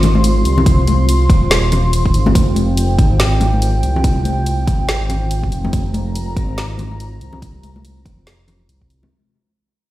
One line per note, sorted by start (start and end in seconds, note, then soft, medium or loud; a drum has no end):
0.00 0.44 G#1 medium
0.00 9.07 F4 medium
0.00 9.07 C5 medium
0.00 2.34 C6 medium
0.00 closed hi-hat medium
0.00 high conga medium
0.00 low conga medium
0.15 high conga medium
0.24 closed hi-hat medium
0.45 1.28 C2 loud
0.45 closed hi-hat medium
0.58 low conga loud
0.66 kick loud
0.66 closed hi-hat medium
0.87 closed hi-hat medium
0.87 high conga medium
1.09 closed hi-hat medium
1.30 2.13 D#1 loud
1.30 kick loud
1.30 closed hi-hat medium
1.51 snare loud
1.51 closed hi-hat medium
1.72 closed hi-hat medium
1.72 low conga medium
1.93 closed hi-hat medium
2.06 kick medium
2.14 2.34 G#1 loud
2.14 closed hi-hat medium
2.26 high conga loud
2.26 low conga medium
2.35 2.97 F1 loud
2.35 5.72 G5 medium
2.35 kick loud
2.35 closed hi-hat medium
2.56 closed hi-hat medium
2.56 high conga medium
2.77 closed hi-hat medium
2.99 3.82 G#1 loud
2.99 kick loud
2.99 closed hi-hat medium
3.20 snare loud
3.20 closed hi-hat medium
3.40 closed hi-hat medium
3.40 high conga medium
3.40 low conga medium
3.53 high conga medium
3.62 closed hi-hat medium
3.83 4.66 C2 loud
3.83 closed hi-hat soft
3.96 low conga medium
4.04 kick loud
4.04 closed hi-hat medium
4.25 closed hi-hat soft
4.25 high conga medium
4.46 closed hi-hat medium
4.67 5.51 G#1 medium
4.67 kick loud
4.67 closed hi-hat medium
4.89 snare loud
4.89 closed hi-hat medium
5.10 closed hi-hat medium
5.10 low conga medium
5.31 closed hi-hat medium
5.43 kick medium
5.52 5.72 F1 loud
5.52 closed hi-hat medium
5.64 high conga medium
5.64 low conga medium
5.73 6.35 F1 loud
5.73 9.10 A#5 medium
5.73 kick loud
5.73 closed hi-hat medium
5.94 closed hi-hat medium
5.94 high conga medium
6.15 closed hi-hat medium
6.37 7.20 G#1 loud
6.37 kick loud
6.37 closed hi-hat medium
6.58 snare loud
6.58 closed hi-hat medium
6.78 closed hi-hat medium
6.78 high conga medium
6.78 low conga medium
6.92 high conga medium
7.00 closed hi-hat medium
7.21 8.04 C2 loud
7.21 closed hi-hat medium
7.33 low conga medium
7.42 kick loud
7.42 closed hi-hat medium
7.63 closed hi-hat medium
7.63 high conga medium
7.76 high conga medium
7.85 closed hi-hat medium
8.06 8.68 F1 loud
8.06 kick loud
8.06 closed hi-hat medium
8.27 snare loud
8.27 closed hi-hat medium
8.48 closed hi-hat medium
8.48 low conga medium
8.69 9.10 C2 loud
8.69 closed hi-hat medium
8.82 kick medium
8.90 closed hi-hat medium
9.03 high conga medium
9.03 low conga medium